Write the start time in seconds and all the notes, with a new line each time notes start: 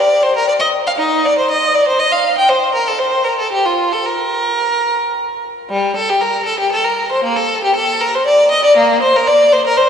0.00 D5
0.23 C5
0.37 A#4
0.48 D5
0.60 D#5
0.87 F5
0.98 D#4
1.25 D5
1.38 C5
1.50 D#5
1.74 D5
1.88 C5
1.99 D#5
2.12 F5
2.38 G5
2.49 C5
2.74 A#4
2.87 A4
2.99 C5
3.24 A#4
3.39 A4
3.52 G4
3.65 F4
3.92 A4
4.06 A#4
5.70 G3
5.96 A4
6.09 G4
6.20 A#4
6.46 A4
6.59 G4
6.72 A4
6.84 A#4
7.12 C5
7.24 A#3
7.36 A4
7.64 G4
7.75 A4
8.01 A#4
8.14 C5
8.26 D5
8.51 D#5
8.65 D5
8.76 A#3
9.02 C5
9.16 A#4
9.27 D5
9.52 C5
9.66 A#4
9.77 C5